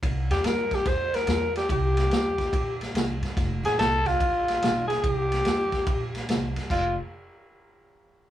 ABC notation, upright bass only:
X:1
M:4/4
L:1/8
Q:"Swing" 1/4=144
K:Cmix
V:1 name="Upright bass" clef=bass
C,, E,, G,,2 E,,2 E,,2 | C,,2 E,,2 B,,,2 C,, G,, | F,,, A,,, C,,2 A,,,2 =B,,,2 | C,,2 E,,2 B,,,2 C,, G,, |
F,,, z6 z |]